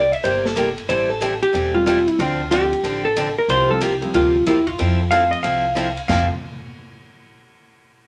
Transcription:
0.00 0.11 C2 loud
0.00 0.12 D5 loud
0.12 0.24 E5 loud
0.12 ride soft
0.23 0.76 G1 medium
0.23 0.45 C3 medium
0.23 0.45 G3 medium
0.23 0.45 A#3 medium
0.23 0.45 E4 medium
0.23 0.45 G4 medium
0.23 0.45 C5 loud
0.23 ride medium
0.45 0.89 A4 loud
0.45 snare medium
0.56 0.67 C3 medium
0.56 0.67 G3 medium
0.56 0.67 A#3 medium
0.56 0.68 E4 medium
0.56 0.68 G4 medium
0.56 hi-hat pedal medium
0.56 ride medium
0.78 ride soft
0.89 1.41 A1 medium
0.89 1.10 E3 medium
0.89 1.10 G3 medium
0.89 1.10 C4 medium
0.89 1.10 E4 medium
0.89 1.10 A4 medium
0.89 1.10 C5 loud
0.89 ride medium
1.10 1.42 A4 loud
1.21 1.32 E3 medium
1.21 1.32 G3 medium
1.21 1.33 C4 medium
1.21 1.33 E4 medium
1.21 1.33 A4 medium
1.21 hi-hat pedal medium
1.21 ride medium
1.43 1.72 G4 loud
1.43 ride soft
1.53 2.06 E1 medium
1.53 1.74 E3 medium
1.53 1.74 G3 medium
1.53 1.75 C4 medium
1.53 1.75 E4 medium
1.53 1.75 A4 medium
1.53 ride medium
1.74 2.16 G3 medium
1.74 2.16 A3 medium
1.74 2.16 C4 medium
1.74 2.17 E4 medium
1.74 1.85 F4 medium
1.74 2.17 G4 medium
1.86 1.97 E3 medium
1.86 1.97 G3 medium
1.86 1.98 C4 medium
1.86 1.98 E4 medium
1.86 2.07 F4 medium
1.86 1.98 A4 medium
1.86 hi-hat pedal medium
1.86 ride medium
2.07 2.20 E4 medium
2.07 ride soft
2.19 2.71 D2 loud
2.19 2.40 D3 medium
2.19 2.40 F3 medium
2.19 2.40 C4 medium
2.19 2.40 D4 medium
2.19 2.53 F4 medium
2.19 2.40 A4 medium
2.19 ride medium
2.50 2.62 D3 medium
2.50 2.69 F3 medium
2.50 2.62 F3 medium
2.50 2.69 A3 medium
2.50 2.69 C4 medium
2.50 2.63 C4 medium
2.50 2.69 D4 medium
2.50 2.63 D4 medium
2.50 2.70 F4 medium
2.50 3.04 G4 medium
2.50 2.63 A4 medium
2.50 hi-hat pedal medium
2.50 ride medium
2.73 ride soft
2.83 3.35 A1 medium
2.83 3.05 D3 medium
2.83 3.05 F3 medium
2.83 3.05 C4 medium
2.83 3.05 D4 medium
2.83 3.05 A4 medium
2.83 ride medium
3.05 3.35 A4 medium
3.16 3.27 D3 medium
3.16 3.28 F3 medium
3.16 3.28 C4 medium
3.16 3.28 D4 medium
3.16 3.28 A4 medium
3.16 hi-hat pedal medium
3.16 ride medium
3.38 3.50 A#4 medium
3.48 4.00 C2 loud
3.48 3.70 C3 medium
3.48 3.70 F3 medium
3.48 3.70 A#3 medium
3.48 3.70 F4 medium
3.48 3.71 G4 medium
3.48 3.70 C5 loud
3.48 ride medium
3.68 3.80 F3 medium
3.68 3.80 G3 medium
3.68 3.80 A#3 medium
3.68 3.80 C4 medium
3.68 3.80 F4 medium
3.68 3.83 A4 medium
3.81 3.92 C3 medium
3.81 3.92 F3 medium
3.81 3.92 A#3 medium
3.81 3.93 F4 medium
3.81 3.93 G4 medium
3.81 4.15 G4 medium
3.81 hi-hat pedal medium
3.81 ride medium
4.01 4.43 F3 medium
4.01 4.44 G3 medium
4.01 4.44 A#3 medium
4.01 4.44 C4 medium
4.01 4.44 E4 medium
4.01 ride soft
4.14 4.41 D2 medium
4.14 4.35 C3 medium
4.14 4.35 F3 medium
4.14 4.35 A#3 medium
4.14 4.35 F4 medium
4.14 4.47 F4 medium
4.14 4.35 G4 medium
4.14 ride medium
4.46 4.74 E2 medium
4.46 4.58 C3 medium
4.46 4.58 F3 medium
4.46 4.58 A#3 medium
4.46 4.67 E4 medium
4.46 4.58 F4 medium
4.46 4.58 G4 medium
4.46 hi-hat pedal medium
4.46 ride medium
4.67 5.76 F4 medium
4.67 kick medium
4.67 ride soft
4.78 5.32 F2 medium
4.78 5.00 F3 medium
4.78 5.00 C4 medium
4.78 5.00 E4 medium
4.78 5.00 A4 medium
4.78 ride medium
5.11 5.60 F3 medium
5.11 5.23 F3 medium
5.11 5.60 A3 medium
5.11 5.60 C4 medium
5.11 5.23 C4 medium
5.11 5.23 E4 medium
5.11 5.61 F4 medium
5.11 5.23 A4 medium
5.11 5.60 E5 medium
5.11 5.31 F5 medium
5.11 hi-hat pedal medium
5.11 ride medium
5.31 5.43 D#5 medium
5.31 ride soft
5.43 5.96 C2 medium
5.43 5.64 F3 medium
5.43 5.65 C4 medium
5.43 5.65 E4 medium
5.43 5.65 A4 medium
5.43 6.01 F5 medium
5.43 ride medium
5.75 5.87 F3 medium
5.75 5.87 C4 medium
5.75 5.88 E4 medium
5.75 5.88 A4 medium
5.75 hi-hat pedal medium
5.75 ride medium
5.97 ride soft
6.08 6.28 F1 medium
6.08 6.27 F3 medium
6.08 6.25 F3 medium
6.08 6.27 A3 medium
6.08 6.27 C4 medium
6.08 6.25 C4 medium
6.08 6.27 E4 medium
6.08 6.26 E4 medium
6.08 6.27 F4 medium
6.08 6.26 A4 medium
6.08 6.28 F5 medium
6.08 kick loud
6.08 snare medium
6.08 crash medium

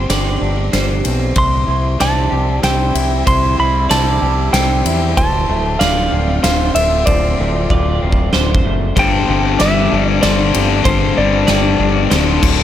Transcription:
0.00 1.05 G2 medium
0.00 0.72 G3 medium
0.00 1.04 C4 medium
0.00 0.10 D4 medium
0.00 0.13 C5 medium
0.00 0.37 C6 medium
0.09 0.38 G1 medium
0.09 1.99 G4 medium
0.09 0.73 D5 medium
0.09 snare medium
0.09 ride medium
0.41 0.70 G1 medium
0.41 1.36 D4 medium
0.72 1.02 G1 medium
0.72 2.62 G3 medium
0.72 1.36 C5 medium
0.72 snare medium
0.72 ride medium
1.04 1.33 B1 medium
1.04 1.66 C4 medium
1.04 ride medium
1.33 1.65 C2 medium
1.33 5.11 C3 medium
1.33 2.95 C3 medium
1.33 5.11 G3 medium
1.33 5.12 E4 medium
1.33 2.00 C5 medium
1.33 kick medium
1.33 ride soft
1.38 1.97 C6 medium
1.67 1.96 C2 medium
1.67 2.93 E4 medium
1.99 2.29 C2 medium
1.99 3.89 C5 medium
1.99 2.63 D5 medium
1.99 2.64 A5 medium
1.99 snare medium
1.99 ride medium
2.30 2.60 C2 medium
2.30 3.89 G4 medium
2.62 2.92 C2 medium
2.62 4.53 C4 medium
2.62 3.27 C5 medium
2.62 3.27 G5 medium
2.62 snare medium
2.62 ride medium
2.94 3.23 C2 medium
2.94 3.57 E4 medium
2.94 ride medium
3.27 3.55 C2 medium
3.27 4.85 C3 medium
3.27 3.93 C5 medium
3.27 3.59 C6 medium
3.27 kick loud
3.27 ride medium
3.58 3.87 C2 medium
3.58 4.85 E4 medium
3.58 3.90 B5 loud
3.90 4.18 C2 medium
3.90 5.20 C5 medium
3.90 4.53 D5 medium
3.90 4.53 A5 medium
3.90 snare medium
3.90 ride medium
4.22 4.50 C2 medium
4.22 5.17 G4 medium
4.53 4.81 C2 medium
4.53 5.20 C4 medium
4.53 5.17 C5 medium
4.53 5.17 G5 medium
4.53 snare medium
4.53 ride medium
4.85 5.13 E2 medium
4.85 5.17 E4 medium
4.85 ride medium
5.16 5.45 D1 medium
5.16 6.75 D2 medium
5.16 8.92 D3 medium
5.16 8.92 C4 medium
5.16 8.92 F4 medium
5.16 5.80 C5 medium
5.16 5.82 A5 medium
5.16 kick medium
5.16 ride medium
5.49 5.77 D1 medium
5.49 6.74 A3 medium
5.79 6.08 D1 medium
5.79 7.38 F4 medium
5.79 6.43 D5 medium
5.79 6.39 F5 medium
5.79 snare medium
5.79 ride medium
6.12 6.40 D1 medium
6.12 7.70 C4 medium
6.43 6.72 D1 medium
6.43 8.01 D3 medium
6.43 7.07 C5 medium
6.43 6.75 F5 medium
6.43 snare medium
6.43 ride medium
6.74 7.03 D1 medium
6.74 7.37 A3 medium
6.74 7.04 E5 medium
6.74 ride medium
7.06 7.35 D1 medium
7.06 8.65 D2 medium
7.06 7.70 C5 medium
7.06 8.29 D5 medium
7.06 kick medium
7.06 ride medium
7.38 7.67 D1 medium
7.38 8.63 A3 medium
7.70 7.98 D1 medium
7.70 8.96 F4 medium
7.70 8.33 D5 medium
7.70 kick medium
8.02 8.30 D1 medium
8.02 8.96 C4 medium
8.12 kick medium
8.32 8.61 D1 medium
8.32 8.96 D3 medium
8.32 8.95 C5 medium
8.32 snare medium
8.55 kick medium
8.65 8.93 F#1 medium
8.65 8.96 A3 medium
8.96 9.24 G1 medium
8.96 10.54 G2 medium
8.96 9.28 G2 medium
8.96 9.28 D3 medium
8.96 9.28 G3 medium
8.96 9.58 C5 medium
8.96 9.63 G5 medium
8.96 kick loud
8.96 ride medium
9.28 9.57 G1 medium
9.28 9.59 G2 medium
9.28 9.59 D3 medium
9.28 9.60 G3 medium
9.28 10.52 C4 medium
9.59 9.88 G1 medium
9.59 9.91 G2 medium
9.59 9.91 D3 medium
9.59 9.92 G3 medium
9.59 11.17 G4 medium
9.59 10.21 D5 medium
9.59 10.10 E5 medium
9.59 snare medium
9.59 ride medium
9.90 10.20 G1 medium
9.90 10.22 G2 medium
9.90 10.22 D3 medium
9.90 10.23 G3 medium
9.90 11.79 D4 medium
10.10 10.22 D5 medium
10.21 10.51 G1 medium
10.21 10.53 G2 loud
10.21 10.54 D3 medium
10.21 11.80 G3 medium
10.21 10.54 G3 loud
10.21 10.83 C5 medium
10.21 10.85 D5 medium
10.21 snare medium
10.21 ride medium
10.53 10.83 G1 medium
10.53 10.85 G2 medium
10.53 10.86 D3 medium
10.53 10.86 G3 medium
10.53 11.15 C4 medium
10.53 ride medium
10.84 11.13 G1 medium
10.84 12.11 G2 medium
10.84 11.17 G2 medium
10.84 11.17 D3 loud
10.84 11.18 G3 loud
10.84 11.47 C5 medium
10.84 11.18 C5 medium
10.84 kick loud
10.84 ride medium
11.16 11.45 G1 medium
11.16 11.48 G2 medium
11.16 11.49 D3 medium
11.16 11.48 G3 loud
11.16 12.12 C4 medium
11.16 12.40 D5 medium
11.47 11.77 G1 medium
11.47 11.78 G2 medium
11.47 11.79 D3 medium
11.47 11.79 G3 loud
11.47 12.11 G4 medium
11.47 12.10 D5 medium
11.47 snare medium
11.47 ride medium
11.79 12.08 G1 medium
11.79 12.10 G2 medium
11.79 12.10 D3 medium
11.79 12.10 G3 medium
11.79 12.63 D4 medium
12.10 12.40 D1 medium
12.10 12.41 D2 medium
12.10 12.42 D2 medium
12.10 12.42 A2 loud
12.10 12.42 D3 loud
12.10 12.63 C5 medium
12.10 snare medium
12.10 ride medium
12.43 12.63 D1 medium
12.43 12.63 D2 medium
12.43 12.63 A2 medium
12.43 12.63 D3 loud
12.43 kick loud
12.43 crash medium

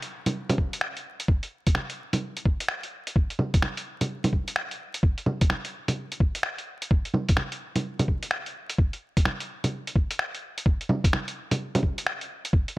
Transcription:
0.02 closed hi-hat soft
0.26 closed hi-hat medium
0.26 low bongo medium
0.49 closed hi-hat soft
0.49 low bongo medium
0.58 kick medium
0.73 closed hi-hat medium
0.81 finger snap loud
0.97 closed hi-hat soft
1.20 closed hi-hat medium
1.28 kick loud
1.43 closed hi-hat soft
1.67 kick loud
1.67 closed hi-hat medium
1.75 finger snap loud
1.75 low bongo soft
1.90 closed hi-hat soft
2.13 closed hi-hat medium
2.13 low bongo medium
2.37 closed hi-hat soft
2.45 kick loud
2.60 closed hi-hat medium
2.68 finger snap loud
2.83 closed hi-hat soft
3.07 closed hi-hat medium
3.16 kick loud
3.30 closed hi-hat soft
3.39 low bongo medium
3.54 kick loud
3.54 closed hi-hat medium
3.62 finger snap loud
3.62 low bongo soft
3.77 closed hi-hat soft
4.01 closed hi-hat medium
4.01 low bongo soft
4.24 closed hi-hat soft
4.24 low bongo medium
4.33 kick medium
4.48 closed hi-hat medium
4.56 finger snap loud
4.71 closed hi-hat soft
4.94 closed hi-hat medium
5.03 kick loud
5.18 closed hi-hat soft
5.26 low bongo medium
5.41 kick loud
5.41 closed hi-hat medium
5.50 finger snap loud
5.50 low bongo soft
5.65 closed hi-hat soft
5.88 closed hi-hat medium
5.88 low bongo soft
6.12 closed hi-hat soft
6.20 kick loud
6.35 closed hi-hat medium
6.43 finger snap loud
6.58 closed hi-hat soft
6.82 closed hi-hat medium
6.91 kick loud
7.05 closed hi-hat soft
7.14 low bongo medium
7.29 kick loud
7.29 closed hi-hat medium
7.37 finger snap loud
7.37 low bongo soft
7.52 closed hi-hat soft
7.76 closed hi-hat medium
7.76 low bongo soft
7.99 closed hi-hat soft
7.99 low bongo medium
8.08 kick medium
8.23 closed hi-hat soft
8.31 finger snap loud
8.46 closed hi-hat soft
8.70 closed hi-hat soft
8.78 kick loud
8.93 closed hi-hat soft
9.17 kick loud
9.17 closed hi-hat medium
9.25 finger snap medium
9.25 low bongo soft
9.40 closed hi-hat soft
9.64 closed hi-hat soft
9.64 low bongo soft
9.87 closed hi-hat soft
9.96 kick loud
10.11 closed hi-hat soft
10.19 finger snap loud
10.35 closed hi-hat soft
10.58 closed hi-hat medium
10.66 kick loud
10.81 closed hi-hat soft
10.89 low bongo medium
11.04 kick loud
11.04 closed hi-hat medium
11.13 finger snap medium
11.13 low bongo soft
11.28 closed hi-hat soft
11.51 closed hi-hat medium
11.51 low bongo medium
11.75 closed hi-hat soft
11.75 low bongo medium
11.83 kick medium
11.98 closed hi-hat medium
12.07 finger snap loud
12.21 closed hi-hat soft
12.45 closed hi-hat medium
12.53 kick loud
12.68 closed hi-hat soft

